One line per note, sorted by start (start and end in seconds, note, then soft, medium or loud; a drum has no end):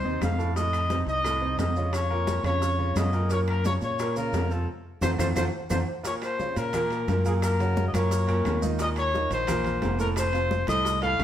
0.00 0.19 C5 medium
0.04 0.20 D#2 medium
0.04 0.32 C3 medium
0.04 0.33 C4 medium
0.04 0.33 D#4 medium
0.04 high conga soft
0.21 1.02 F2 medium
0.21 0.54 F5 medium
0.21 high bongo medium
0.21 low bongo medium
0.21 high conga medium
0.21 high timbale medium
0.21 low timbale medium
0.21 claves medium
0.21 maracas medium
0.38 0.52 A2 medium
0.38 0.53 A3 medium
0.38 0.53 A4 medium
0.38 high bongo soft
0.38 high conga soft
0.38 maracas soft
0.56 0.84 A2 medium
0.56 0.85 A3 medium
0.56 0.85 A4 medium
0.56 1.04 D#5 loud
0.56 high bongo medium
0.56 high conga soft
0.56 maracas medium
0.73 high conga soft
0.73 high timbale medium
0.73 claves medium
0.73 maracas medium
0.90 1.19 C3 medium
0.90 1.19 C4 medium
0.90 1.19 D#4 medium
0.90 high bongo medium
0.90 high conga medium
0.90 high timbale medium
0.90 low timbale medium
0.90 maracas medium
1.06 1.55 C2 medium
1.06 1.56 D#5 loud
1.06 high conga soft
1.06 maracas soft
1.24 1.39 A2 medium
1.24 1.39 A3 medium
1.24 1.39 A4 medium
1.24 high bongo medium
1.24 high conga soft
1.24 high timbale medium
1.24 claves medium
1.24 maracas medium
1.42 1.70 C3 medium
1.42 1.70 C4 medium
1.42 1.70 D#4 medium
1.42 high conga soft
1.58 2.38 F2 medium
1.58 1.95 D#5 medium
1.58 high bongo medium
1.58 low bongo medium
1.58 high conga medium
1.58 high timbale medium
1.58 low timbale medium
1.58 maracas medium
1.76 2.04 C#3 medium
1.76 2.05 C#4 medium
1.76 2.05 F4 medium
1.76 maracas soft
1.93 2.45 C#5 loud
1.93 high bongo medium
1.93 high conga soft
1.93 high timbale medium
1.93 claves medium
1.93 maracas medium
2.10 2.39 A#2 medium
2.10 2.38 A#3 medium
2.10 2.39 A#4 medium
2.10 high bongo soft
2.10 high conga soft
2.27 high bongo medium
2.27 high conga medium
2.27 high timbale medium
2.27 low timbale medium
2.27 maracas medium
2.44 2.92 F2 medium
2.44 2.73 C#3 medium
2.44 2.73 C#4 medium
2.44 2.73 F4 medium
2.44 2.93 C#5 loud
2.44 high bongo soft
2.44 high conga soft
2.44 high timbale medium
2.44 claves medium
2.44 maracas soft
2.62 high bongo medium
2.62 high conga soft
2.62 maracas medium
2.79 3.07 C#3 medium
2.79 3.07 C#4 medium
2.79 3.07 F4 medium
2.79 high conga soft
2.96 3.76 F#2 medium
2.96 3.29 D#5 medium
2.96 high bongo medium
2.96 low bongo medium
2.96 high conga medium
2.96 high timbale medium
2.96 low timbale medium
2.96 claves medium
2.96 maracas medium
3.13 3.27 A#2 medium
3.13 3.27 A#3 medium
3.13 3.28 A#4 medium
3.13 high bongo soft
3.13 maracas soft
3.30 3.59 A#2 medium
3.30 3.59 A#3 medium
3.30 3.59 A#4 medium
3.30 3.40 C#5 medium
3.30 high bongo medium
3.30 high conga soft
3.30 maracas medium
3.48 3.65 A#4 medium
3.48 high conga soft
3.48 high timbale medium
3.48 claves medium
3.65 3.93 C#3 medium
3.65 3.93 C#4 medium
3.65 3.93 F4 medium
3.65 3.74 C#5 medium
3.65 high bongo medium
3.65 high conga medium
3.65 high timbale medium
3.65 low timbale medium
3.65 maracas medium
3.81 4.30 A#2 medium
3.81 4.15 C#5 medium
3.81 high conga soft
3.81 maracas soft
3.99 4.14 A#2 medium
3.99 4.14 A#3 medium
3.99 4.14 A#4 medium
3.99 high bongo medium
3.99 high conga soft
3.99 high timbale medium
3.99 claves medium
3.99 maracas medium
4.16 4.45 C#3 medium
4.16 4.45 C#4 medium
4.16 4.45 F4 medium
4.16 4.54 A#4 medium
4.16 high conga soft
4.16 maracas medium
4.33 4.65 F2 medium
4.33 high bongo medium
4.33 low bongo medium
4.33 high conga medium
4.33 high timbale medium
4.33 low timbale medium
4.33 maracas medium
4.50 4.65 C3 medium
4.50 4.65 C4 medium
4.50 4.65 F4 medium
4.50 4.69 A4 medium
4.50 maracas soft
5.01 5.15 F2 medium
5.01 5.13 A3 medium
5.01 5.13 C4 loud
5.01 5.13 F4 medium
5.01 5.10 C5 loud
5.01 high bongo medium
5.01 low conga medium
5.01 high timbale loud
5.01 claves medium
5.01 maracas medium
5.18 5.32 F2 loud
5.18 5.30 A3 medium
5.18 5.30 C4 medium
5.18 5.30 F4 medium
5.18 5.28 C5 medium
5.18 high bongo medium
5.18 low conga loud
5.18 high timbale medium
5.18 claves medium
5.18 maracas loud
5.35 5.49 F2 loud
5.35 5.47 A3 medium
5.35 5.47 C4 medium
5.35 5.47 F4 medium
5.35 5.45 C5 medium
5.35 high bongo medium
5.35 low conga medium
5.35 high timbale medium
5.35 claves loud
5.35 maracas medium
5.70 5.83 F2 medium
5.70 5.81 A3 medium
5.70 5.81 C4 medium
5.70 5.82 F4 medium
5.70 5.79 C5 medium
5.70 high bongo medium
5.70 low conga loud
5.70 high timbale medium
5.70 claves medium
5.70 maracas loud
6.03 6.32 A#2 medium
6.03 6.32 A#3 medium
6.03 6.32 A#4 medium
6.03 6.15 C#5 medium
6.03 high bongo medium
6.03 high conga soft
6.03 high timbale medium
6.03 maracas medium
6.22 6.59 C5 medium
6.22 high bongo soft
6.22 high conga soft
6.22 high timbale medium
6.22 claves medium
6.22 maracas soft
6.39 6.68 C#3 medium
6.39 6.68 C#4 medium
6.39 6.68 F4 medium
6.39 high bongo medium
6.39 high conga medium
6.39 maracas soft
6.56 7.04 A#2 medium
6.56 7.26 A#4 medium
6.56 high bongo soft
6.56 high conga soft
6.56 high timbale medium
6.56 maracas medium
6.73 7.02 A#2 medium
6.73 7.02 A#3 medium
6.73 7.03 A#4 medium
6.73 high bongo medium
6.73 high conga soft
6.73 low conga medium
6.73 high timbale medium
6.73 claves medium
6.73 maracas medium
6.90 high bongo soft
6.90 high conga soft
6.90 high timbale medium
6.90 maracas soft
7.08 7.88 F#2 medium
7.08 7.22 A#2 medium
7.08 7.22 A#3 medium
7.08 7.23 A#4 medium
7.08 high bongo soft
7.08 low bongo medium
7.08 high conga medium
7.08 high timbale medium
7.08 maracas soft
7.25 7.53 A#2 medium
7.25 7.54 A#3 medium
7.25 7.34 G#4 medium
7.25 7.54 A#4 medium
7.25 high conga soft
7.25 maracas medium
7.42 7.85 A#4 loud
7.42 high bongo medium
7.42 high conga soft
7.42 high timbale medium
7.42 claves medium
7.42 maracas medium
7.60 7.88 C#3 medium
7.60 7.88 C#4 medium
7.60 7.88 F#4 medium
7.60 high bongo soft
7.60 high conga soft
7.60 high timbale medium
7.60 maracas soft
7.77 high bongo medium
7.77 high conga medium
7.77 maracas soft
7.88 7.96 D#5 medium
7.93 8.41 F#2 medium
7.93 8.22 A#2 medium
7.93 8.22 A#3 medium
7.93 8.23 A#4 medium
7.93 8.63 C#5 medium
7.93 high bongo soft
7.93 high conga loud
7.93 high timbale medium
7.93 claves medium
7.93 maracas medium
8.11 high bongo medium
8.11 high conga soft
8.11 maracas medium
8.27 8.56 A#2 medium
8.27 8.56 A#3 medium
8.27 8.56 A#4 medium
8.27 high bongo soft
8.27 high conga soft
8.27 high timbale medium
8.27 maracas soft
8.45 9.25 D#2 medium
8.45 high bongo soft
8.45 low bongo medium
8.45 high conga medium
8.45 high timbale medium
8.45 low timbale medium
8.45 claves medium
8.45 maracas soft
8.62 8.76 D#3 medium
8.62 8.76 D#4 medium
8.62 8.76 F4 medium
8.62 high conga medium
8.62 maracas medium
8.79 9.07 A#2 medium
8.79 9.07 A#3 medium
8.79 9.08 A#4 medium
8.79 8.89 D#5 loud
8.79 high bongo medium
8.79 high conga soft
8.79 high timbale medium
8.79 maracas medium
8.96 9.29 C#5 loud
8.96 high bongo soft
8.96 high conga soft
8.96 high timbale medium
8.96 claves medium
8.96 maracas soft
9.13 9.42 D#3 medium
9.13 9.42 D#4 medium
9.13 9.42 F4 medium
9.13 high bongo medium
9.13 high conga medium
9.13 maracas soft
9.31 9.79 A#1 loud
9.31 9.97 C5 loud
9.31 high bongo soft
9.31 high conga soft
9.31 high timbale medium
9.31 maracas medium
9.47 9.76 A#2 medium
9.47 9.76 A#3 medium
9.47 9.76 A#4 medium
9.47 high bongo medium
9.47 high conga soft
9.47 low conga medium
9.47 high timbale medium
9.47 claves medium
9.47 maracas medium
9.65 high bongo soft
9.65 high conga soft
9.65 low conga medium
9.65 high timbale medium
9.65 maracas soft
9.81 10.62 F1 medium
9.81 9.96 A#2 medium
9.81 9.96 A#3 medium
9.81 9.96 A#4 medium
9.81 high bongo soft
9.81 low bongo medium
9.81 high conga medium
9.81 high timbale medium
9.81 low timbale medium
9.81 maracas soft
9.99 10.27 A2 medium
9.99 10.28 A3 medium
9.99 10.28 A4 medium
9.99 10.08 A#4 medium
9.99 high conga soft
9.99 maracas medium
10.16 10.65 C5 loud
10.16 high bongo medium
10.16 high conga soft
10.16 high timbale medium
10.16 claves medium
10.16 maracas loud
10.33 10.61 C3 medium
10.33 10.61 C4 medium
10.33 10.62 F4 medium
10.33 high bongo soft
10.33 high conga soft
10.33 high timbale medium
10.33 maracas soft
10.51 high bongo medium
10.51 high conga medium
10.51 maracas soft
10.67 11.16 C2 medium
10.67 10.96 A2 medium
10.67 10.96 A3 medium
10.67 10.97 A4 medium
10.67 11.00 D#5 loud
10.67 high bongo soft
10.67 high conga medium
10.67 high timbale medium
10.67 claves medium
10.67 maracas medium
10.85 high bongo medium
10.85 high conga soft
10.85 maracas medium
11.02 11.24 A2 medium
11.02 11.24 A3 medium
11.02 11.24 A4 medium
11.02 11.24 F5 loud
11.02 high bongo soft
11.02 high conga soft
11.02 high timbale medium
11.02 maracas soft
11.19 11.24 A#1 loud
11.19 high bongo soft
11.19 low bongo medium
11.19 high conga medium
11.19 high timbale medium
11.19 low timbale medium
11.19 claves medium
11.19 maracas soft